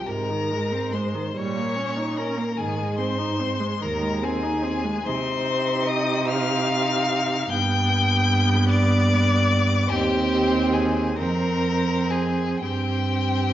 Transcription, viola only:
0.07 0.31 C3 medium
0.30 0.52 D#3 medium
0.51 0.73 G#3 medium
0.72 0.94 C4 medium
0.92 1.16 G#3 medium
1.14 1.34 D#3 medium
1.35 1.57 G3 medium
1.56 1.77 A#3 medium
1.76 1.98 C#4 medium
1.97 2.19 D#4 medium
2.17 2.39 C#4 medium
2.37 2.58 A#3 medium
2.58 2.79 D#3 medium
2.77 3.00 G#3 medium
2.98 3.20 C4 medium
3.18 3.41 D#4 medium
3.39 3.62 C4 medium
3.60 3.82 G#3 medium
3.80 4.04 D#3 medium
4.02 4.24 G#3 medium
4.22 4.44 C4 medium
4.43 4.64 D#4 medium
4.63 4.85 C4 medium
4.84 5.04 G#3 medium
5.04 7.46 D#4 loud
7.51 9.88 B3 loud
9.91 11.15 C4 loud
11.19 12.59 C4 medium
12.62 13.53 C4 medium

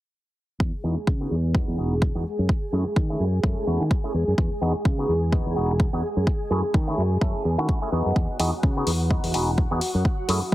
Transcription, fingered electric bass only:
0.60 0.70 E2 medium
0.84 0.94 E2 medium
0.97 muted fingered electric bass stroke soft
1.07 1.26 C#3 medium
1.31 1.63 E2 medium
1.68 1.76 E2 medium
1.78 2.10 E1 medium
2.15 2.23 E2 medium
2.39 2.47 F#2 medium
2.73 2.83 F#2 medium
2.86 muted fingered electric bass stroke soft
2.96 3.15 D#3 medium
3.20 3.39 F#2 medium
3.43 3.54 F#2 loud
3.67 3.77 E2 medium
3.80 3.88 D#3 medium
4.14 4.24 E2 medium
4.28 4.36 F#2 medium
4.38 4.48 E2 medium
4.61 4.72 E2 medium
4.75 muted fingered electric bass stroke soft
4.85 5.04 C#3 medium
5.09 5.41 E2 medium
5.46 5.54 E2 medium
5.56 5.88 E1 medium
5.93 6.01 E2 medium
6.17 6.24 F#2 medium
6.51 6.61 F#2 medium
6.64 muted fingered electric bass stroke soft
6.74 6.93 D#3 medium
6.98 7.17 F#2 medium
7.21 7.32 F#2 medium
7.45 7.55 E2 medium
7.58 7.66 D#3 medium
7.92 8.02 E2 medium
8.06 8.13 F#2 medium
8.39 8.50 E2 medium
8.53 muted fingered electric bass stroke soft
8.63 8.82 C#3 medium
8.87 9.19 E2 medium
9.24 9.32 E2 medium
9.34 9.66 E1 medium
9.71 9.79 E2 medium
9.95 10.02 F#2 medium
10.29 10.39 F#2 medium
10.42 muted fingered electric bass stroke soft

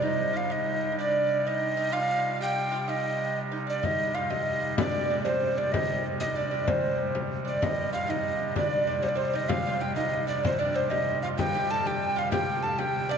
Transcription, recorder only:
0.03 0.38 D#5 medium
0.37 0.53 F5 medium
0.52 0.99 D#5 medium
0.99 1.49 D5 loud
1.48 1.95 D#5 loud
1.93 2.41 F5 loud
2.42 2.91 G5 loud
2.89 3.40 D#5 loud
3.70 3.86 D5 medium
3.85 4.16 D#5 loud
4.15 4.32 F5 medium
4.30 4.78 D#5 medium
4.79 5.26 D5 loud
5.25 5.59 C5 medium
5.58 5.74 D5 medium
5.72 6.04 D#5 medium
6.20 6.37 D#5 medium
6.36 6.70 D5 medium
6.69 7.19 C5 medium
7.48 7.65 D5 medium
7.64 7.93 D#5 medium
7.93 8.12 F5 medium
8.10 8.57 D#5 medium
8.57 9.04 D5 medium
9.03 9.10 C5 medium
9.09 9.19 D5 medium
9.17 9.37 C5 medium
9.36 9.50 D#5 medium
9.49 9.83 F5 medium
9.81 9.95 G5 medium
9.96 10.26 D#5 medium
10.28 10.43 D5 medium
10.45 10.60 C5 medium
10.59 10.77 D5 medium
10.76 10.92 C5 medium
10.90 11.22 D#5 medium
11.22 11.28 F5 medium
11.38 11.72 G5 loud
11.71 11.88 A5 loud
11.87 12.20 G5 medium
12.19 12.31 F5 medium
12.32 12.64 G5 loud
12.63 12.80 A5 medium
12.79 13.13 G5 loud
13.11 13.18 D5 medium

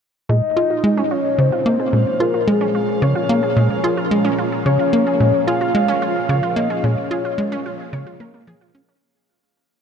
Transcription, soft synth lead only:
0.29 1.13 D#5 loud
1.11 1.40 C#5 loud
1.38 2.22 C5 loud
2.20 2.49 A#4 medium
2.47 3.04 G#4 medium
3.02 4.11 C#5 medium
4.65 5.43 C#5 loud
5.47 5.73 F5 loud
5.74 6.57 F5 loud
6.56 6.85 D#5 medium
6.83 8.47 C#5 loud

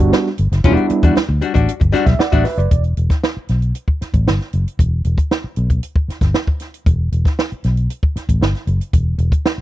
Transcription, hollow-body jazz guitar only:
0.64 0.85 G3 medium
0.64 0.85 D4 medium
0.64 0.86 F#4 medium
0.91 muted hollow-body jazz guitar stroke soft
1.03 1.14 G3 soft
1.03 1.14 D4 medium
1.03 1.14 F#4 medium
1.15 muted hollow-body jazz guitar stroke soft
1.29 muted hollow-body jazz guitar stroke soft
1.41 1.54 G3 medium
1.41 1.53 D4 medium
1.41 1.53 F#4 medium
1.54 1.72 G3 soft
1.54 1.71 D4 medium
1.54 1.71 F#4 medium
1.80 muted hollow-body jazz guitar stroke soft
1.92 2.14 G3 medium
1.92 2.06 D4 medium
1.92 2.05 F#4 medium
2.06 muted hollow-body jazz guitar stroke soft
2.20 muted hollow-body jazz guitar stroke soft
2.32 2.45 G3 medium
2.32 2.45 D4 medium
2.32 2.45 F#4 medium
2.46 muted hollow-body jazz guitar stroke soft
2.58 muted hollow-body jazz guitar stroke soft

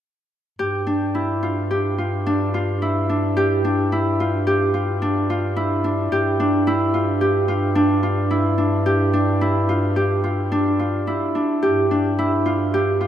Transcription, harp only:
0.59 1.70 G4 medium
0.87 2.26 D4 medium
1.15 1.49 E4 medium
1.43 1.98 F4 medium
1.71 3.36 G4 medium
1.98 2.54 F4 medium
2.26 3.09 D4 medium
2.54 2.88 F4 medium
2.82 3.92 E4 medium
3.09 3.64 D4 medium
3.37 4.46 G4 medium
3.64 5.01 D4 medium
3.92 4.26 E4 medium
4.20 4.73 F4 medium
4.47 6.12 G4 medium
4.74 5.29 F4 medium
5.02 5.84 D4 medium
5.30 5.62 F4 medium
5.56 6.67 E4 medium
5.84 6.39 D4 medium
6.12 7.21 G4 medium
6.40 7.75 D4 medium
6.67 7.00 E4 medium
6.94 7.48 F4 medium
7.21 8.85 G4 medium
7.48 8.02 F4 medium
7.75 8.57 D4 medium
8.03 8.37 F4 medium
8.31 9.41 E4 medium
8.58 9.13 D4 medium
8.86 9.96 G4 medium
9.13 10.51 D4 medium
9.41 9.75 E4 medium
9.69 10.23 F4 medium
9.96 11.62 G4 medium
10.24 10.79 F4 medium
10.52 11.35 D4 medium
10.79 11.13 F4 medium
11.07 12.18 E4 medium
11.35 11.91 D4 soft
11.62 12.73 G4 medium
11.91 13.07 D4 medium
12.19 12.52 E4 medium
12.46 13.00 F4 medium
12.74 13.07 G4 medium
13.01 13.07 F4 medium

